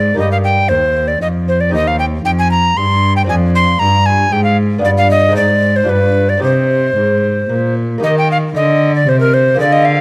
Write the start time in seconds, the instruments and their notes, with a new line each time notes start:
Already playing: lute G#2 D#4 G4, cello G#2, recorder D5
0.14 cello G2, lute A#3 D#4 G4
0.19 lute G2, recorder D#5
0.32 recorder F5
0.44 recorder G5
0.69 cello D#2, lute D#2, recorder C5
1.08 recorder D5
1.22 lute F2, cello F2, recorder D#5
1.48 recorder C5
1.61 recorder D5
1.69 lute C4 D#4 G4
1.73 lute D#2, cello D#2, recorder D#5
1.87 recorder F5
1.99 recorder G5
2.25 lute F2, cello F2, recorder G5
2.39 recorder G#5
2.51 recorder A#5
2.77 cello G2, lute G2, recorder C6
3.16 recorder G5
3.24 lute C4 D4 F4
3.29 lute F2, cello F2, recorder G#5
3.55 recorder C6
3.79 lute G2, cello G2, recorder A#5
4.06 recorder G#5
4.32 lute G#2, cello G#2, recorder G5
4.44 recorder F5
4.78 lute B3 D4 F4
4.83 lute G2, cello G2, recorder D5
4.97 recorder F5
5.11 recorder D#5
5.29 lute G#3 C4 D#4
5.35 lute G#2, cello G#2, recorder D5
5.76 recorder C5
5.83 lute D4 F4 G4
5.88 lute G2, cello G2, recorder B4
6.29 recorder D5
6.37 lute C4 D#4 G4
6.42 lute C3, cello C3, recorder C5
6.96 lute G#2, cello G#2
7.49 lute A#2, cello A#2
7.98 lute A#3 D#4 G4
8.03 lute D#3, cello D#3, recorder D#5
8.18 recorder G5
8.31 recorder F5
8.55 lute D3, cello D3, recorder D#5
8.96 recorder D5
9.07 lute C3, cello C3, recorder C5
9.20 recorder A#4
9.34 recorder C5
9.54 lute A#3 F4 G#4
9.59 lute D3, cello D3, recorder D5
9.73 recorder D#5
9.85 recorder F5